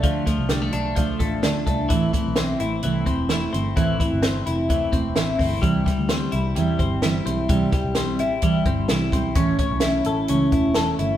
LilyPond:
<<
  \new Staff \with { instrumentName = "Clean electric guitar" } { \time 4/4 \key a \minor \tempo 4 = 129 <f a d'>8 f8 g16 a16 d'8 f8 a8 d'8 a8 | e8 e8 c'8 e'8 e8 c'8 e'8 c'8 | e8 e8 c'8 e'8 e8 c'8 e'8 c'8 | g8 g8 c'8 e'8 g8 c'8 e'8 c'8 |
g8 g8 c'8 e'8 g8 c'8 e'8 c'8 | cis'8 cis'8 e'8 a'8 cis'8 e'8 a'8 e'8 | }
  \new Staff \with { instrumentName = "Steel-string acoustic guitar" } { \time 4/4 \key a \minor <d a d' f'>8 <a d' f'>8 <d a d' f'>8 <a d' f'>8 <d a d' f'>8 <a d' f'>8 <d a d' f'>8 <a d' f'>8 | <a, e a c' e'>8 <a c' e'>8 <e a c' e'>8 <a c' e'>8 <a, e a c' e'>8 <a c' e'>8 <e a c' e'>8 <a c' e'>8 | <a, e a c' e'>8 <a c' e'>8 <e a c' e'>8 <a c' e'>8 <a, e a c' e'>8 <a c' e'>8 <e a c' e'>8 <a c' e'>8 | <c e g c' e'>8 <g c' e'>8 <e g c' e'>8 <g c' e'>8 <c e g c' e'>8 <g c' e'>8 <e g c' e'>8 <g c' e'>8 |
<c e g c' e'>8 <g c' e'>8 <e g c' e'>8 <g c' e'>8 <c e g c' e'>8 <g c' e'>8 <e g c' e'>8 <g c' e'>8 | <a, e a cis' e'>8 <a e'>8 <e a cis' e'>8 <a cis' e'>8 <a, e a cis' e'>8 <a cis' e'>8 <e a cis' e'>8 <a cis' e'>8 | }
  \new Staff \with { instrumentName = "Picked electric bass" } { \clef bass \time 4/4 \key a \minor d,8. c,8. b,,4 a,,8 d,8 c,8 | a,,8. b,,8. a,,8 c,8 e,,4 g,,8 | a,,8. g,,8. f,,4 e,,8 a,,8 g,,8 | c,8. d,8. c,8 e,8 g,,4 b,,8 |
c,8. b,,8. a,,4 g,,8 c,8 b,,8 | a,,8. b,,8. a,,8 cis,8 e,,4 g,,8 | }
  \new DrumStaff \with { instrumentName = "Drums" } \drummode { \time 4/4 <hh bd>8 <hh bd sn>8 <hh sn>8 hh8 <hh bd>8 <hh bd>8 <hh sn>8 <hh bd>8 | <hh bd>8 <hh bd>8 <hh sn>8 hh8 hh8 <hh bd>8 <hh sn>8 hh8 | <hh bd>8 <hh bd>8 <hh sn>8 hh8 <hh bd>8 <hh bd>8 <hh sn>8 <hho bd>8 | <hh bd>8 <hh bd sn>8 <hh sn>8 hh8 hh8 <hh bd>8 <hh sn>8 hh8 |
<hh bd>8 <hh bd sn>8 <hh sn>8 hh8 <hh bd>8 <hh bd>8 <hh sn>8 <hh bd>8 | <hh bd>8 <hh bd>8 <hh sn>8 hh8 hh8 <hh bd>8 <hh sn>8 hh8 | }
>>